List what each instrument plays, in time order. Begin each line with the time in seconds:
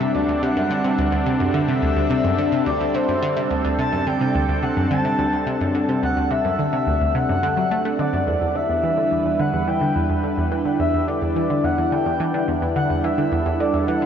Already playing: analog synth pad G3 C4 D4 A4, soft synth lead E5
0.00 synth arpeggio sound C3
0.15 synth arpeggio sound D2, soft synth lead D5
0.28 synth arpeggio sound D2
0.42 synth arpeggio sound C3, soft synth lead F#5
0.57 synth arpeggio sound F#2
0.70 synth arpeggio sound D3
0.84 synth arpeggio sound C3
0.98 synth arpeggio sound D2
1.12 synth arpeggio sound D2
1.26 synth arpeggio sound C3
1.40 synth arpeggio sound F#2
1.54 synth arpeggio sound D3, soft synth lead E5
1.68 synth arpeggio sound C3
1.82 synth arpeggio sound D2
1.96 synth arpeggio sound D2
2.10 synth arpeggio sound C3
2.24 synth arpeggio sound F#2
2.38 synth arpeggio sound D3
2.52 synth arpeggio sound C3
2.66 synth arpeggio sound D2, soft synth lead D5
2.80 synth arpeggio sound D2
2.94 synth arpeggio sound C3, soft synth lead C5
3.08 synth arpeggio sound F#2
3.23 synth arpeggio sound D3
3.37 synth arpeggio sound C3
3.51 synth arpeggio sound D2
3.65 synth arpeggio sound D2
3.79 synth arpeggio sound C3, soft synth lead A5
3.93 synth arpeggio sound F#2
4.07 synth arpeggio sound D3, soft synth lead G5
4.21 synth arpeggio sound C3
4.35 synth arpeggio sound D2
4.49 synth arpeggio sound D2
4.63 synth arpeggio sound C3, soft synth lead F#5
4.77 synth arpeggio sound F#2
4.91 synth arpeggio sound D3, soft synth lead A5
5.05 synth arpeggio sound C3
5.19 synth arpeggio sound D2
5.33 synth arpeggio sound D2
5.47 synth arpeggio sound C3
5.61 synth arpeggio sound F#2
5.75 synth arpeggio sound D3
5.89 synth arpeggio sound C3
6.03 synth arpeggio sound D2, soft synth lead F#5
6.17 synth arpeggio sound D2
6.31 synth arpeggio sound C3, soft synth lead E5
6.45 synth arpeggio sound F#2
6.59 synth arpeggio sound D3
6.73 synth arpeggio sound C3
6.87 synth arpeggio sound D2
7.01 synth arpeggio sound D2
7.15 synth arpeggio sound C3, soft synth lead F#5
7.29 synth arpeggio sound F#2
7.43 synth arpeggio sound D3
7.57 synth arpeggio sound F#3
7.71 synth arpeggio sound A3
7.85 synth arpeggio sound A3
7.99 synth arpeggio sound D3, soft synth lead D5
8.13 synth arpeggio sound F#2
8.27 synth arpeggio sound E2, analog synth pad G3 D4 E4 B4, soft synth lead D5
8.41 synth arpeggio sound E2
8.55 synth arpeggio sound D3, soft synth lead E5
8.69 synth arpeggio sound E2
8.84 synth arpeggio sound E3
8.97 synth arpeggio sound D3
9.11 synth arpeggio sound E2
9.26 synth arpeggio sound E2
9.39 synth arpeggio sound D3, soft synth lead F#5
9.53 synth arpeggio sound E2
9.68 synth arpeggio sound E3, soft synth lead G5
9.81 synth arpeggio sound D3
9.96 synth arpeggio sound E2
10.10 synth arpeggio sound E2
10.24 synth arpeggio sound D3
10.38 synth arpeggio sound E2
10.52 synth arpeggio sound E3
10.66 synth arpeggio sound D3
10.80 synth arpeggio sound E2, soft synth lead E5
10.94 synth arpeggio sound E2
11.08 synth arpeggio sound D3, soft synth lead D5
11.22 synth arpeggio sound E2
11.36 synth arpeggio sound E3
11.50 synth arpeggio sound D3
11.64 synth arpeggio sound E2, soft synth lead F#5
11.78 synth arpeggio sound E2
11.92 synth arpeggio sound D3, soft synth lead G5
12.06 synth arpeggio sound E2
12.20 synth arpeggio sound E3
12.34 synth arpeggio sound D3
12.48 synth arpeggio sound E2
12.62 synth arpeggio sound E2
12.76 synth arpeggio sound D3, analog synth pad A4, soft synth lead F#5
12.90 synth arpeggio sound E2
13.04 synth arpeggio sound E3, soft synth lead E5
13.18 synth arpeggio sound D3
13.32 synth arpeggio sound E2
13.46 synth arpeggio sound E2
13.60 synth arpeggio sound D3, soft synth lead D5
13.74 synth arpeggio sound E2
13.88 synth arpeggio sound E3, soft synth lead F#5
14.02 synth arpeggio sound D3